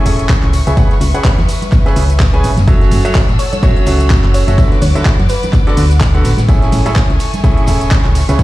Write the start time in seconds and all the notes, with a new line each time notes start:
Already playing: A3 G#5 C#6
0.06 E1 A2 C#4 G#4 A4 E5, open hi-hat, tambourine, shaker
0.19 closed hi-hat, tambourine, shaker
0.29 kick, snare, clap, closed hi-hat, tambourine, shaker
0.43 C#2, clap, closed hi-hat, tambourine
0.53 B4 E5, open hi-hat, tambourine, shaker
0.67 C#2 C#3 C#4 G#4 B4 E5, closed hi-hat, tambourine, shaker
0.77 C#3 C#4 G#4 B4 F#5, kick, closed hi-hat, tambourine, shaker
0.91 snare, closed hi-hat, tambourine
1.00 C#2, snare, open hi-hat, tambourine, high conga, shaker
1.14 C#3 C#4 G#4 B4 F#5, closed hi-hat, tambourine, shaker
1.24 kick, snare, clap, closed hi-hat, tambourine, shaker
1.38 E2, snare, closed hi-hat, tambourine
1.48 snare, open hi-hat, tambourine, shaker
1.62 closed hi-hat, tambourine, high conga, shaker
1.72 kick, clap, closed hi-hat, tambourine, shaker
1.86 C#3 C#4 G#4 B4 E5, snare, closed hi-hat, tambourine
1.96 C#2, open hi-hat, tambourine, shaker
2.09 closed hi-hat, tambourine, shaker
2.20 kick, snare, clap, closed hi-hat, tambourine, shaker
2.33 C#3 C#4 G#4 B4 G#5, closed hi-hat, tambourine, high conga
2.44 G#1, open hi-hat, tambourine, shaker
2.57 F#1, snare, closed hi-hat, tambourine, high conga, shaker
2.67 F#3 C#4 F#4 A4 E5 F#5 E6, kick, closed hi-hat, tambourine, shaker
2.81 snare, closed hi-hat, tambourine
2.91 F#1, open hi-hat, ride, tambourine, high conga, shaker
3.05 F#3 C#4 F#4 A4 E5, closed hi-hat, tambourine, shaker
3.14 kick, snare, clap, closed hi-hat, tambourine, shaker
3.29 A1, snare, closed hi-hat, tambourine
3.39 C#5, open hi-hat, ride, tambourine, shaker
3.52 C#5, closed hi-hat, tambourine, high conga, shaker
3.63 A1 F#3 C#4 F#4 A4 C#5 E5, kick, closed hi-hat, tambourine, shaker
3.76 closed hi-hat, tambourine
3.86 C#2 F#3 C#4 F#4 A4 E5, open hi-hat, ride, tambourine, shaker
4.00 closed hi-hat, tambourine, shaker
4.10 kick, snare, clap, closed hi-hat, tambourine, shaker
4.24 F#1, clap, closed hi-hat, tambourine
4.34 C#5, open hi-hat, ride, tambourine, shaker
4.48 F#1 C#4 F#4 A4 E5, closed hi-hat, tambourine, shaker
4.58 D3 B3 F#4 A4 B4 E5 D6, kick, closed hi-hat, tambourine, shaker
4.72 snare, closed hi-hat, tambourine
4.81 D2 C#5, snare, open hi-hat, ride, tambourine, high conga, shaker
4.95 D3 B3 F#4 A4 E5, closed hi-hat, tambourine, shaker
5.05 kick, snare, clap, closed hi-hat, tambourine, shaker
5.19 F#2, snare, closed hi-hat, tambourine
5.29 B4, snare, open hi-hat, ride, tambourine, shaker
5.43 closed hi-hat, tambourine, high conga, shaker
5.53 kick, clap, closed hi-hat, tambourine, shaker
5.67 D3 B3 F#4 A4 D5, snare, closed hi-hat, tambourine
5.77 D2, open hi-hat, ride, tambourine, shaker
5.91 closed hi-hat, tambourine, shaker
6.00 kick, snare, clap, closed hi-hat, tambourine, shaker
6.14 D3 B3 F#4 A4 F#5, closed hi-hat, tambourine, high conga
6.25 A1, open hi-hat, ride, tambourine, shaker
6.37 A1, snare, closed hi-hat, tambourine, high conga, shaker
6.48 A2 A3 C#4 G#4 A4 E5 G#5 C#6, kick, closed hi-hat, tambourine, shaker
6.62 snare, closed hi-hat, tambourine
6.72 A1, open hi-hat, ride, tambourine, high conga, shaker
6.86 A2 C#4 G#4 A4 E5, closed hi-hat, tambourine, shaker
6.96 kick, snare, clap, closed hi-hat, tambourine, shaker
7.10 C#2, snare, closed hi-hat, tambourine
7.20 open hi-hat, ride, tambourine, shaker
7.34 closed hi-hat, tambourine, high conga, shaker
7.44 C#2 A2 C#4 G#4 A4 E5, kick, closed hi-hat, tambourine, shaker
7.57 closed hi-hat, tambourine
7.67 E1 A2 C#4 G#4 A4 E5, open hi-hat, ride, tambourine, shaker
7.81 closed hi-hat, tambourine, shaker
7.91 kick, snare, clap, closed hi-hat, tambourine, shaker
8.05 C#2, clap, closed hi-hat, tambourine
8.15 B4 E5, open hi-hat, ride, tambourine, shaker
8.29 C#2 C#3 C#4 G#4 B4 E5, closed hi-hat, tambourine, shaker
8.39 C#3 C#4 G#4 B4 F#5, kick, closed hi-hat, tambourine, shaker